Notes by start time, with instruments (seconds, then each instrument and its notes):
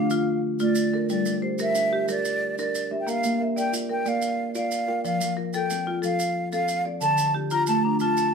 Already playing: kalimba A3 D4, marimba D4, flute F5
0.10 kalimba D3, marimba F4, maracas
0.59 kalimba A3, marimba F4, flute D5, maracas
0.75 maracas
0.94 kalimba D4 A4, marimba A#4
1.09 marimba G3, kalimba F4, flute D5, maracas
1.26 kalimba G3, maracas
1.42 kalimba G4, marimba C5
1.58 kalimba G4, marimba A#4, flute E5, maracas
1.75 kalimba D4, maracas
1.91 kalimba G4, marimba G4
2.08 kalimba G3, marimba A#4, flute D5, maracas
2.25 maracas
2.58 kalimba D4, marimba A#4, flute D5, maracas
2.75 maracas
2.91 kalimba D4 G4, marimba E5
3.00 flute G5
3.07 marimba A#3, kalimba A#4, flute F5, maracas
3.24 kalimba A#3, maracas
3.40 kalimba A#4, marimba E5
3.56 kalimba A#4, marimba D5, flute G5, maracas
3.73 kalimba F4, maracas
3.89 marimba A#4, kalimba A#4, flute G5
4.06 kalimba A#3, marimba D5, flute F5, maracas
4.22 maracas
4.55 kalimba F4, marimba D5, flute F5, maracas
4.71 maracas
4.88 kalimba F4 A#4, marimba G5
5.05 marimba F3, kalimba D5, flute F5, maracas
5.21 kalimba F3, maracas
5.37 kalimba F4, marimba A#4
5.53 kalimba F4, marimba A4, flute G5, maracas
5.70 kalimba C4, maracas
5.87 marimba F4, kalimba F4
6.02 kalimba F3, marimba A4, flute F5, maracas
6.19 maracas
6.52 kalimba C4, marimba A4, flute F5, maracas
6.68 maracas
6.85 kalimba C4 F4, marimba D5
7.01 marimba D3, kalimba A4, flute A5, maracas
7.18 kalimba D3, maracas
7.34 kalimba D4, marimba G4
7.51 kalimba D4, marimba F4, flute A#5, maracas
7.67 kalimba A3, flute A5, maracas
7.83 kalimba D4, marimba D4, flute A#5
8.00 kalimba D3, marimba F4, flute A5, maracas
8.17 maracas